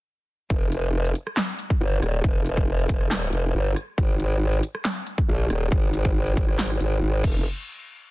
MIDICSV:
0, 0, Header, 1, 3, 480
1, 0, Start_track
1, 0, Key_signature, -4, "minor"
1, 0, Tempo, 434783
1, 554, Time_signature, 4, 2, 24, 8
1, 8951, End_track
2, 0, Start_track
2, 0, Title_t, "Wobble bass"
2, 0, Program_c, 0, 39
2, 553, Note_on_c, 0, 29, 96
2, 1255, Note_off_c, 0, 29, 0
2, 1994, Note_on_c, 0, 31, 92
2, 2216, Note_off_c, 0, 31, 0
2, 2234, Note_on_c, 0, 27, 102
2, 2456, Note_off_c, 0, 27, 0
2, 2474, Note_on_c, 0, 29, 98
2, 3175, Note_off_c, 0, 29, 0
2, 3194, Note_on_c, 0, 29, 96
2, 3656, Note_off_c, 0, 29, 0
2, 3674, Note_on_c, 0, 29, 99
2, 3896, Note_off_c, 0, 29, 0
2, 3914, Note_on_c, 0, 31, 97
2, 4136, Note_off_c, 0, 31, 0
2, 4393, Note_on_c, 0, 32, 96
2, 5095, Note_off_c, 0, 32, 0
2, 5834, Note_on_c, 0, 34, 94
2, 6055, Note_off_c, 0, 34, 0
2, 6072, Note_on_c, 0, 27, 97
2, 6295, Note_off_c, 0, 27, 0
2, 6314, Note_on_c, 0, 32, 97
2, 7015, Note_off_c, 0, 32, 0
2, 7034, Note_on_c, 0, 32, 100
2, 7255, Note_off_c, 0, 32, 0
2, 7273, Note_on_c, 0, 32, 102
2, 7495, Note_off_c, 0, 32, 0
2, 7512, Note_on_c, 0, 32, 100
2, 7735, Note_off_c, 0, 32, 0
2, 7753, Note_on_c, 0, 32, 91
2, 7986, Note_off_c, 0, 32, 0
2, 7993, Note_on_c, 0, 29, 101
2, 8216, Note_off_c, 0, 29, 0
2, 8951, End_track
3, 0, Start_track
3, 0, Title_t, "Drums"
3, 554, Note_on_c, 9, 36, 116
3, 664, Note_off_c, 9, 36, 0
3, 794, Note_on_c, 9, 42, 87
3, 904, Note_off_c, 9, 42, 0
3, 1160, Note_on_c, 9, 42, 37
3, 1270, Note_off_c, 9, 42, 0
3, 1273, Note_on_c, 9, 42, 82
3, 1383, Note_off_c, 9, 42, 0
3, 1399, Note_on_c, 9, 37, 52
3, 1510, Note_off_c, 9, 37, 0
3, 1513, Note_on_c, 9, 38, 121
3, 1513, Note_on_c, 9, 39, 94
3, 1624, Note_off_c, 9, 38, 0
3, 1624, Note_off_c, 9, 39, 0
3, 1753, Note_on_c, 9, 42, 81
3, 1864, Note_off_c, 9, 42, 0
3, 1880, Note_on_c, 9, 36, 64
3, 1990, Note_off_c, 9, 36, 0
3, 2234, Note_on_c, 9, 37, 51
3, 2234, Note_on_c, 9, 42, 81
3, 2344, Note_off_c, 9, 37, 0
3, 2344, Note_off_c, 9, 42, 0
3, 2474, Note_on_c, 9, 36, 125
3, 2584, Note_off_c, 9, 36, 0
3, 2714, Note_on_c, 9, 42, 82
3, 2824, Note_off_c, 9, 42, 0
3, 2839, Note_on_c, 9, 36, 70
3, 2950, Note_off_c, 9, 36, 0
3, 3080, Note_on_c, 9, 42, 36
3, 3190, Note_off_c, 9, 42, 0
3, 3193, Note_on_c, 9, 36, 107
3, 3194, Note_on_c, 9, 42, 83
3, 3304, Note_off_c, 9, 36, 0
3, 3304, Note_off_c, 9, 42, 0
3, 3320, Note_on_c, 9, 37, 54
3, 3430, Note_off_c, 9, 37, 0
3, 3434, Note_on_c, 9, 38, 122
3, 3434, Note_on_c, 9, 39, 92
3, 3544, Note_off_c, 9, 38, 0
3, 3544, Note_off_c, 9, 39, 0
3, 3560, Note_on_c, 9, 37, 54
3, 3670, Note_off_c, 9, 37, 0
3, 3674, Note_on_c, 9, 42, 76
3, 3784, Note_off_c, 9, 42, 0
3, 4154, Note_on_c, 9, 37, 48
3, 4154, Note_on_c, 9, 42, 79
3, 4265, Note_off_c, 9, 37, 0
3, 4265, Note_off_c, 9, 42, 0
3, 4393, Note_on_c, 9, 36, 121
3, 4504, Note_off_c, 9, 36, 0
3, 4634, Note_on_c, 9, 42, 82
3, 4744, Note_off_c, 9, 42, 0
3, 5001, Note_on_c, 9, 42, 36
3, 5111, Note_off_c, 9, 42, 0
3, 5114, Note_on_c, 9, 42, 77
3, 5225, Note_off_c, 9, 42, 0
3, 5240, Note_on_c, 9, 37, 51
3, 5351, Note_off_c, 9, 37, 0
3, 5354, Note_on_c, 9, 38, 127
3, 5354, Note_on_c, 9, 39, 98
3, 5464, Note_off_c, 9, 38, 0
3, 5464, Note_off_c, 9, 39, 0
3, 5594, Note_on_c, 9, 42, 74
3, 5704, Note_off_c, 9, 42, 0
3, 5719, Note_on_c, 9, 36, 67
3, 5830, Note_off_c, 9, 36, 0
3, 6074, Note_on_c, 9, 37, 49
3, 6074, Note_on_c, 9, 42, 80
3, 6184, Note_off_c, 9, 37, 0
3, 6184, Note_off_c, 9, 42, 0
3, 6313, Note_on_c, 9, 36, 124
3, 6424, Note_off_c, 9, 36, 0
3, 6554, Note_on_c, 9, 42, 78
3, 6664, Note_off_c, 9, 42, 0
3, 6679, Note_on_c, 9, 36, 68
3, 6789, Note_off_c, 9, 36, 0
3, 6919, Note_on_c, 9, 42, 36
3, 7029, Note_off_c, 9, 42, 0
3, 7033, Note_on_c, 9, 36, 113
3, 7033, Note_on_c, 9, 42, 76
3, 7144, Note_off_c, 9, 36, 0
3, 7144, Note_off_c, 9, 42, 0
3, 7159, Note_on_c, 9, 37, 50
3, 7270, Note_off_c, 9, 37, 0
3, 7273, Note_on_c, 9, 38, 127
3, 7273, Note_on_c, 9, 39, 91
3, 7384, Note_off_c, 9, 38, 0
3, 7384, Note_off_c, 9, 39, 0
3, 7399, Note_on_c, 9, 37, 54
3, 7510, Note_off_c, 9, 37, 0
3, 7513, Note_on_c, 9, 42, 73
3, 7624, Note_off_c, 9, 42, 0
3, 7993, Note_on_c, 9, 36, 118
3, 7993, Note_on_c, 9, 49, 89
3, 8103, Note_off_c, 9, 36, 0
3, 8103, Note_off_c, 9, 49, 0
3, 8951, End_track
0, 0, End_of_file